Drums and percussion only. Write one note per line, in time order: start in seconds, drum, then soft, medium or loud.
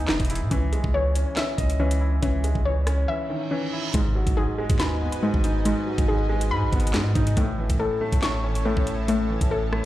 0.08 snare loud
0.08 clap medium
0.20 kick medium
0.20 closed hi-hat soft
0.25 closed hi-hat medium
0.30 closed hi-hat medium
0.35 closed hi-hat medium
0.51 kick loud
0.51 closed hi-hat medium
0.73 closed hi-hat medium
0.84 kick medium
1.15 closed hi-hat medium
1.37 snare loud
1.37 clap medium
1.37 closed hi-hat medium
1.58 kick loud
1.58 closed hi-hat medium
1.70 closed hi-hat medium
1.91 closed hi-hat medium
2.23 kick loud
2.23 closed hi-hat medium
2.44 closed hi-hat medium
2.55 kick medium
2.87 cross-stick loud
2.87 closed hi-hat medium
3.94 kick loud
3.94 closed hi-hat medium
4.27 kick medium
4.27 closed hi-hat medium
4.70 kick loud
4.70 closed hi-hat medium
4.80 snare loud
4.80 clap medium
4.80 closed hi-hat medium
5.12 closed hi-hat medium
5.34 kick medium
5.44 closed hi-hat medium
5.65 closed hi-hat medium
5.98 kick medium
5.98 closed hi-hat medium
6.41 closed hi-hat medium
6.73 kick loud
6.73 closed hi-hat soft
6.80 closed hi-hat medium
6.87 closed hi-hat medium
6.94 snare loud
6.94 clap medium
6.94 closed hi-hat medium
7.15 kick loud
7.15 closed hi-hat medium
7.27 closed hi-hat medium
7.37 kick loud
7.37 closed hi-hat medium
7.70 kick medium
7.70 closed hi-hat medium
8.12 kick loud
8.12 closed hi-hat medium
8.23 snare loud
8.23 clap medium
8.23 closed hi-hat medium
8.55 closed hi-hat medium
8.77 kick medium
8.87 closed hi-hat medium
9.08 closed hi-hat medium
9.41 kick medium
9.41 closed hi-hat medium
9.73 cross-stick loud